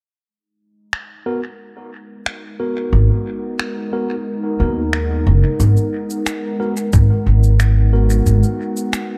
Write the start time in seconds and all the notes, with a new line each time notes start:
0.26 G#3
0.38 D#4
0.93 finger snap
1.26 B3 F#4 A#4
1.46 B3
1.53 A#4
2.26 finger snap
2.36 F#5
2.60 B3 F#4 A#4
2.93 G#1
3.59 finger snap
3.93 B3 F#4 A#4
4.60 D#2 B3 F#4 A#4
4.93 finger snap
5.27 F#1
5.60 G#1, cabasa
5.77 cabasa
6.10 cabasa
6.26 finger snap, cabasa
6.60 B3 F#4 A#4
6.77 cabasa
6.93 G#1, kick, cabasa
7.26 G#1
7.43 cabasa
7.60 finger snap, cabasa
7.93 B3 F#4 A#4
8.10 cabasa
8.26 G#1, cabasa
8.43 cabasa
8.77 cabasa
8.93 finger snap, cabasa